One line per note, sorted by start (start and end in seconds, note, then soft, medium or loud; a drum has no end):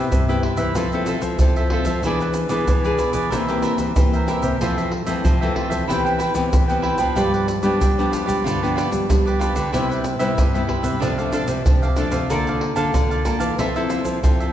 0.00 0.21 B3 medium
0.00 0.22 E4 medium
0.00 0.22 G4 medium
0.00 0.25 B4 soft
0.00 0.26 C5 soft
0.00 0.25 E5 medium
0.11 0.72 G2 medium
0.11 0.39 C3 medium
0.11 pandeiro medium
0.11 shaker medium
0.11 surdo medium
0.28 0.73 B3 medium
0.28 0.74 E4 medium
0.28 0.74 G4 medium
0.28 0.43 B4 soft
0.28 0.43 C5 soft
0.28 0.43 E5 soft
0.28 pandeiro soft
0.28 shaker soft
0.43 0.58 G4 soft
0.43 0.58 B4 medium
0.43 0.59 C5 soft
0.43 0.56 E5 medium
0.43 pandeiro medium
0.43 surdo soft
0.57 0.72 E3 medium
0.57 0.74 B4 medium
0.57 0.74 C5 soft
0.57 0.73 E5 medium
0.57 pandeiro medium
0.57 shaker medium
0.57 surdo soft
0.75 1.37 F3 medium
0.75 1.17 F3 medium
0.75 0.87 C4 medium
0.75 0.87 E4 medium
0.75 0.90 F4 medium
0.75 0.91 A4 medium
0.75 0.87 A4 medium
0.75 0.91 C5 medium
0.75 0.91 E5 medium
0.75 pandeiro medium
0.75 shaker medium
0.75 surdo medium
0.92 1.36 C4 medium
0.92 1.36 E4 medium
0.92 1.36 A4 medium
0.92 1.06 A4 soft
0.92 1.07 C5 soft
0.92 1.07 E5 soft
0.92 pandeiro soft
0.92 shaker soft
1.06 1.20 F4 medium
1.06 1.21 A4 medium
1.06 1.21 C5 medium
1.06 1.22 E5 medium
1.06 pandeiro medium
1.06 shaker medium
1.22 1.36 F3 medium
1.22 muted cavaquinho stroke soft
1.22 pandeiro soft
1.22 shaker medium
1.22 surdo soft
1.39 2.01 C3 soft
1.39 1.81 F3 medium
1.39 1.67 C4 medium
1.39 1.67 E4 soft
1.39 1.67 A4 medium
1.39 pandeiro medium
1.39 shaker medium
1.39 surdo loud
1.56 1.71 A4 soft
1.56 1.71 C5 soft
1.56 1.71 E5 medium
1.56 pandeiro soft
1.56 shaker soft
1.70 1.90 C4 medium
1.70 1.91 E4 medium
1.70 1.86 F4 medium
1.70 1.87 A4 medium
1.70 1.91 A4 soft
1.70 1.86 C5 medium
1.70 1.85 E5 medium
1.70 pandeiro medium
1.70 surdo soft
1.85 2.00 F3 medium
1.85 2.03 A4 soft
1.85 2.02 C5 soft
1.85 2.02 E5 soft
1.85 pandeiro medium
1.85 shaker medium
1.85 surdo soft
2.03 2.45 E3 loud
2.03 2.65 E3 medium
2.03 2.47 B3 medium
2.03 2.47 D4 medium
2.03 2.19 E4 medium
2.03 2.48 G#4 medium
2.03 2.20 G#4 medium
2.03 2.20 B4 medium
2.03 pandeiro medium
2.03 shaker medium
2.03 surdo soft
2.07 2.19 D5 medium
2.20 2.34 G#4 soft
2.20 2.34 B4 soft
2.20 2.34 D5 soft
2.20 pandeiro soft
2.20 shaker soft
2.34 muted cavaquinho stroke soft
2.34 pandeiro medium
2.34 shaker medium
2.49 2.64 E3 medium
2.49 2.77 B3 medium
2.49 2.78 D4 medium
2.49 2.78 G#4 medium
2.49 2.83 G#4 soft
2.49 2.82 B4 soft
2.49 2.81 D5 medium
2.49 pandeiro medium
2.49 shaker medium
2.67 3.29 B2 medium
2.67 2.95 E3 loud
2.67 pandeiro medium
2.67 shaker medium
2.67 surdo medium
2.84 3.30 B3 medium
2.84 3.30 D4 medium
2.84 3.30 G#4 medium
2.84 2.97 G#4 soft
2.84 2.98 B4 soft
2.84 2.99 D5 soft
2.84 pandeiro soft
2.84 shaker soft
2.98 3.14 E4 medium
2.98 3.13 G#4 soft
2.98 3.13 B4 soft
2.98 3.12 D5 soft
2.98 pandeiro medium
2.98 shaker medium
2.98 surdo soft
3.13 3.29 E3 medium
3.13 3.30 G#4 medium
3.13 3.30 B4 medium
3.13 3.29 D5 medium
3.13 pandeiro medium
3.13 shaker medium
3.13 surdo soft
3.30 3.93 E3 medium
3.30 3.73 E3 medium
3.30 3.42 A#3 medium
3.30 3.42 C4 medium
3.30 3.46 E4 medium
3.30 3.42 G4 medium
3.30 3.46 A#4 medium
3.30 3.47 C5 medium
3.30 3.46 E5 medium
3.30 pandeiro medium
3.30 shaker medium
3.30 surdo medium
3.48 3.91 A#3 medium
3.48 3.92 C4 medium
3.48 3.92 G4 medium
3.48 3.62 A#4 soft
3.48 3.62 C5 soft
3.48 3.63 E5 soft
3.48 pandeiro soft
3.48 shaker soft
3.62 3.77 E4 medium
3.62 3.78 A#4 medium
3.62 3.78 C5 medium
3.62 3.79 E5 medium
3.62 pandeiro medium
3.62 shaker medium
3.78 3.93 E3 medium
3.78 muted cavaquinho stroke soft
3.78 pandeiro medium
3.78 shaker medium
3.78 surdo soft
3.96 4.57 E3 medium
3.96 4.37 E3 medium
3.96 4.15 A#3 soft
3.96 4.15 C4 soft
3.96 4.16 G4 medium
3.96 pandeiro medium
3.96 shaker medium
3.96 surdo loud
4.13 4.28 A#4 soft
4.13 4.28 C5 soft
4.13 4.28 E5 medium
4.13 pandeiro soft
4.13 shaker soft
4.27 4.54 A#3 soft
4.27 4.55 C4 medium
4.27 4.43 E4 medium
4.27 4.55 G4 medium
4.27 4.43 A#4 medium
4.27 4.42 C5 medium
4.27 4.41 E5 medium
4.27 pandeiro medium
4.27 shaker medium
4.27 surdo soft
4.42 4.57 C3 medium
4.42 4.59 A#4 soft
4.42 4.58 C5 soft
4.42 4.58 E5 soft
4.42 pandeiro medium
4.42 shaker medium
4.42 surdo soft
4.60 5.21 F2 medium
4.60 4.91 E3 medium
4.60 5.01 F3 medium
4.60 4.91 A3 medium
4.60 4.91 C4 medium
4.60 4.75 F4 medium
4.60 4.76 A4 medium
4.60 4.76 C5 medium
4.60 4.76 E5 medium
4.60 pandeiro medium
4.60 shaker medium
4.60 surdo soft
4.77 4.92 A4 soft
4.77 4.92 C5 soft
4.77 4.92 E5 soft
4.77 pandeiro soft
4.77 shaker soft
4.92 muted cavaquinho stroke soft
4.92 pandeiro medium
5.06 5.34 E3 medium
5.06 5.21 F3 medium
5.06 5.35 A3 medium
5.06 5.35 C4 medium
5.06 5.39 A4 medium
5.06 5.39 C5 medium
5.06 5.38 E5 medium
5.06 pandeiro medium
5.06 shaker medium
5.24 5.86 C3 medium
5.24 5.52 F3 loud
5.24 pandeiro medium
5.24 shaker medium
5.24 surdo loud
5.41 5.84 E3 medium
5.41 5.84 A3 medium
5.41 5.85 C4 medium
5.41 5.54 A4 soft
5.41 5.55 C5 soft
5.41 5.56 E5 soft
5.41 pandeiro soft
5.41 shaker soft
5.55 5.70 F4 soft
5.55 5.70 A4 medium
5.55 5.69 C5 medium
5.55 5.69 E5 medium
5.55 pandeiro medium
5.55 surdo soft
5.70 5.85 F3 medium
5.70 5.87 A4 soft
5.70 5.86 C5 medium
5.70 5.86 E5 medium
5.70 pandeiro medium
5.70 shaker medium
5.70 surdo soft
5.88 6.30 E3 medium
5.88 6.50 E3 medium
5.88 6.19 B3 medium
5.88 6.19 C4 medium
5.88 6.03 E4 medium
5.88 6.19 G4 medium
5.88 6.03 B4 medium
5.88 6.03 C5 medium
5.88 6.03 G5 medium
5.88 pandeiro medium
5.88 shaker medium
5.88 surdo medium
6.05 6.19 B4 soft
6.05 6.18 C5 soft
6.05 6.19 G5 medium
6.05 pandeiro soft
6.05 shaker soft
6.18 6.33 E4 medium
6.18 6.34 B4 medium
6.18 6.33 C5 medium
6.18 6.34 G5 medium
6.18 pandeiro medium
6.18 shaker medium
6.34 6.49 E3 medium
6.34 6.63 B3 medium
6.34 6.63 C4 medium
6.34 6.63 G4 medium
6.34 muted cavaquinho stroke soft
6.34 pandeiro medium
6.34 shaker medium
6.34 surdo soft
6.53 6.94 E3 medium
6.53 6.99 E3 soft
6.53 pandeiro medium
6.53 shaker medium
6.53 surdo loud
6.68 6.96 B3 medium
6.68 6.96 C4 medium
6.68 6.97 G4 medium
6.68 6.82 B4 soft
6.68 6.82 C5 soft
6.68 6.83 G5 soft
6.68 pandeiro soft
6.68 shaker soft
6.82 6.98 E4 medium
6.82 6.98 B4 medium
6.82 6.99 C5 medium
6.82 6.97 G5 medium
6.82 pandeiro medium
6.82 surdo soft
6.98 7.14 F3 medium
6.98 7.59 F3 medium
6.98 7.59 B3 soft
6.98 7.60 D4 medium
6.98 7.15 B4 soft
6.98 7.15 C5 soft
6.98 7.14 G5 soft
6.98 pandeiro medium
6.98 shaker medium
6.98 surdo soft
7.15 7.78 G2 medium
7.15 7.58 G3 loud
7.15 7.31 F4 medium
7.15 7.31 G4 medium
7.15 7.32 B4 medium
7.15 7.32 D5 medium
7.15 pandeiro medium
7.15 shaker medium
7.15 surdo soft
7.33 7.47 G4 soft
7.33 7.47 B4 soft
7.33 7.47 D5 soft
7.33 pandeiro soft
7.33 shaker soft
7.47 muted cavaquinho stroke soft
7.47 pandeiro medium
7.47 shaker medium
7.63 7.91 F3 medium
7.63 7.78 G3 medium
7.63 7.91 B3 medium
7.63 7.92 D4 medium
7.63 7.96 G4 medium
7.63 7.95 B4 medium
7.63 7.95 D5 medium
7.63 pandeiro soft
7.63 shaker medium
7.81 8.42 D3 medium
7.81 8.09 G3 loud
7.81 pandeiro medium
7.81 shaker medium
7.81 surdo medium
7.98 8.57 F3 medium
7.98 8.57 B3 medium
7.98 8.57 D4 medium
7.98 8.11 G4 soft
7.98 8.12 B4 soft
7.98 8.12 D5 soft
7.98 pandeiro soft
7.98 shaker soft
8.11 8.27 F4 soft
8.11 8.27 G4 soft
8.11 8.26 B4 medium
8.11 8.25 D5 soft
8.11 pandeiro medium
8.11 shaker medium
8.11 surdo soft
8.26 8.42 G3 medium
8.26 8.43 G4 soft
8.26 8.43 B4 medium
8.26 8.42 D5 medium
8.26 pandeiro medium
8.26 shaker medium
8.26 surdo soft
8.44 9.06 G2 medium
8.44 8.86 D3 medium
8.44 8.59 F4 medium
8.44 8.60 G4 medium
8.44 8.60 B4 medium
8.44 8.60 D5 medium
8.44 pandeiro medium
8.44 shaker medium
8.44 surdo medium
8.61 9.05 F3 soft
8.61 9.05 B3 medium
8.61 9.05 D4 medium
8.61 8.75 G4 soft
8.61 8.76 B4 soft
8.61 8.76 D5 soft
8.61 pandeiro soft
8.61 shaker soft
8.75 8.90 F4 medium
8.75 8.90 G4 medium
8.75 8.90 B4 medium
8.75 8.90 D5 medium
8.75 pandeiro medium
8.75 shaker medium
8.91 9.06 G3 medium
8.91 muted cavaquinho stroke soft
8.91 pandeiro medium
8.91 shaker medium
8.91 surdo soft
9.09 9.71 D3 medium
9.09 9.28 F3 medium
9.09 9.50 G3 medium
9.09 9.29 B3 medium
9.09 9.29 D4 medium
9.09 pandeiro medium
9.09 shaker medium
9.09 surdo medium
9.26 9.38 G4 soft
9.26 9.39 B4 soft
9.26 9.40 D5 soft
9.26 pandeiro soft
9.26 shaker soft
9.39 9.68 F3 soft
9.39 9.68 B3 soft
9.39 9.68 D4 medium
9.39 9.55 F4 medium
9.39 9.55 G4 medium
9.39 9.55 B4 medium
9.39 9.53 D5 medium
9.39 pandeiro medium
9.39 shaker medium
9.55 9.70 D3 medium
9.55 9.71 G4 soft
9.55 9.72 B4 soft
9.55 9.71 D5 soft
9.55 pandeiro medium
9.55 shaker medium
9.55 surdo soft
9.72 10.34 C3 medium
9.72 10.14 C3 loud
9.72 10.04 G3 soft
9.72 10.04 B3 soft
9.72 10.04 E4 medium
9.72 9.88 G4 medium
9.72 9.88 B4 medium
9.72 9.88 C5 medium
9.72 9.88 E5 medium
9.72 pandeiro medium
9.72 shaker medium
9.72 surdo medium
9.89 10.04 B4 soft
9.89 10.04 C5 soft
9.89 10.04 E5 soft
9.89 pandeiro soft
9.89 shaker soft
10.04 muted cavaquinho stroke soft
10.04 pandeiro medium
10.04 shaker medium
10.19 10.34 C3 medium
10.19 10.48 G3 medium
10.19 10.48 B3 medium
10.19 10.48 E4 medium
10.19 10.52 B4 soft
10.19 10.52 C5 soft
10.19 10.51 E5 medium
10.19 pandeiro medium
10.19 shaker medium
10.38 10.99 G2 medium
10.38 10.65 C3 medium
10.38 pandeiro medium
10.38 shaker medium
10.38 surdo medium
10.54 11.00 G3 medium
10.54 11.00 B3 medium
10.54 11.00 E4 medium
10.54 10.68 B4 soft
10.54 10.67 C5 soft
10.54 10.69 E5 soft
10.54 pandeiro soft
10.54 shaker soft
10.68 10.83 G4 medium
10.68 10.83 B4 soft
10.68 10.84 C5 medium
10.68 10.82 E5 medium
10.68 pandeiro medium
10.68 surdo soft
10.83 10.98 C3 medium
10.83 11.00 B4 medium
10.83 11.00 C5 medium
10.83 10.99 E5 medium
10.83 pandeiro soft
10.83 shaker medium
10.83 surdo soft
11.00 11.63 C3 medium
11.00 11.43 C3 medium
11.00 11.11 F3 medium
11.00 11.12 A3 soft
11.00 11.16 D4 medium
11.00 11.12 D4 medium
11.00 11.16 A4 medium
11.00 11.16 D5 medium
11.00 11.17 F5 medium
11.00 pandeiro medium
11.00 shaker medium
11.00 surdo soft
11.18 11.61 F3 medium
11.18 11.62 A3 medium
11.18 11.62 D4 medium
11.18 11.32 A4 soft
11.18 11.32 D5 soft
11.18 11.33 F5 soft
11.18 pandeiro soft
11.18 shaker soft
11.32 11.46 D4 medium
11.32 11.46 A4 medium
11.32 11.47 D5 medium
11.32 11.47 F5 medium
11.32 pandeiro medium
11.32 shaker medium
11.47 11.62 C3 medium
11.47 muted cavaquinho stroke soft
11.47 pandeiro medium
11.47 shaker medium
11.47 surdo soft
11.66 12.07 C3 medium
11.66 12.27 C3 soft
11.66 11.85 F3 medium
11.66 11.85 A3 medium
11.66 11.86 D4 medium
11.66 pandeiro medium
11.66 shaker medium
11.66 surdo loud
11.83 11.96 A4 soft
11.83 11.97 D5 soft
11.83 11.97 F5 soft
11.83 pandeiro soft
11.83 shaker soft
11.96 12.25 F3 medium
11.96 12.25 A3 medium
11.96 12.12 D4 medium
11.96 12.25 D4 medium
11.96 12.13 A4 medium
11.96 12.12 D5 medium
11.96 12.11 F5 medium
11.96 pandeiro medium
11.96 shaker medium
11.96 surdo soft
12.11 12.26 C3 medium
12.11 12.29 A4 soft
12.11 12.28 D5 soft
12.11 12.28 F5 soft
12.11 pandeiro medium
12.11 shaker medium
12.11 surdo soft
12.30 12.71 D3 loud
12.30 12.91 D3 medium
12.30 12.73 A#3 medium
12.30 12.74 F4 medium
12.30 12.74 A4 medium
12.30 12.45 A#4 medium
12.30 12.45 D5 medium
12.30 12.46 F5 medium
12.30 12.46 A5 medium
12.30 pandeiro medium
12.30 shaker medium
12.30 surdo soft
12.47 12.61 D5 soft
12.47 12.61 F5 soft
12.47 12.62 A5 soft
12.47 pandeiro soft
12.47 shaker soft
12.61 muted cavaquinho stroke soft
12.61 pandeiro medium
12.76 12.91 D3 loud
12.76 13.21 A#3 medium
12.76 13.21 F4 medium
12.76 13.21 A4 medium
12.76 13.09 D5 soft
12.76 13.08 F5 medium
12.76 13.08 A5 medium
12.76 pandeiro medium
12.76 shaker medium
12.94 13.22 D3 loud
12.94 13.56 D3 medium
12.94 pandeiro medium
12.94 shaker medium
12.94 surdo medium
13.10 13.25 D5 soft
13.10 13.25 F5 soft
13.10 13.25 A5 medium
13.10 pandeiro soft
13.10 shaker soft
13.25 13.47 A#3 medium
13.25 13.47 F4 medium
13.25 13.47 A4 medium
13.25 13.41 A#4 soft
13.25 13.39 D5 soft
13.25 13.39 F5 medium
13.25 13.38 A5 medium
13.25 pandeiro medium
13.25 shaker medium
13.25 surdo soft
13.39 13.55 E3 medium
13.39 13.56 D5 medium
13.39 13.56 F5 medium
13.39 13.55 A5 medium
13.39 pandeiro medium
13.39 shaker medium
13.39 surdo soft
13.58 13.99 F3 medium
13.58 14.20 F3 medium
13.58 13.68 C4 medium
13.58 13.69 E4 medium
13.58 13.73 F4 medium
13.58 13.74 A4 medium
13.58 13.69 A4 medium
13.58 13.74 C5 medium
13.58 13.74 E5 medium
13.58 pandeiro medium
13.58 shaker medium
13.58 surdo medium
13.76 14.18 C4 medium
13.76 14.19 E4 medium
13.76 14.19 A4 medium
13.76 13.89 A4 soft
13.76 13.90 C5 soft
13.76 13.90 E5 soft
13.76 pandeiro soft
13.76 shaker soft
13.90 14.05 F4 medium
13.90 14.05 A4 medium
13.90 14.05 C5 medium
13.90 14.06 E5 medium
13.90 pandeiro medium
13.90 shaker medium
14.04 14.19 F3 medium
14.04 muted cavaquinho stroke soft
14.04 pandeiro medium
14.04 shaker medium
14.04 surdo soft
14.23 14.53 C3 soft
14.23 14.53 F3 medium
14.23 14.53 C4 medium
14.23 14.53 E4 medium
14.23 14.53 A4 medium
14.23 pandeiro medium
14.23 shaker medium
14.23 surdo loud
14.40 14.53 A4 soft
14.40 14.53 C5 soft
14.40 14.53 E5 medium
14.40 pandeiro soft
14.40 shaker soft